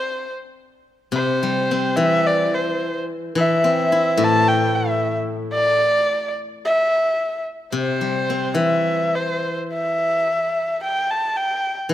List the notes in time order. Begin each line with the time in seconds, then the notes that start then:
Already playing: C4 C5
1.12 C3 C5
1.43 G3
1.71 C4
1.97 E3 E5
2.27 D5
2.55 C5
3.35 E3 E5
3.64 C4
3.92 E4
4.17 A2
4.24 A5
4.48 G5
4.75 E5
5.53 D5
6.65 E5
7.72 C3 C5
8.01 G3
8.30 C4
8.55 E3 E5
9.15 C5
9.74 E5
10.84 G5
11.11 A5
11.36 G5
11.89 E3